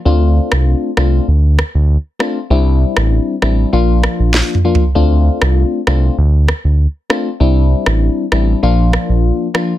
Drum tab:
SD |---------r--------r-----------r-----------r-----|---------r--------r-----------r-----o-----------|---------r--------r-----------r-----------r-----|---------r--------r-----------r-----------r-----|
T2 |------------------------------------------------|----------------------------------------o-------|------------------------------------------------|------------------------------------------------|
FT |------------------------------------------------|--------------------------------------------o---|------------------------------------------------|------------------------------------------------|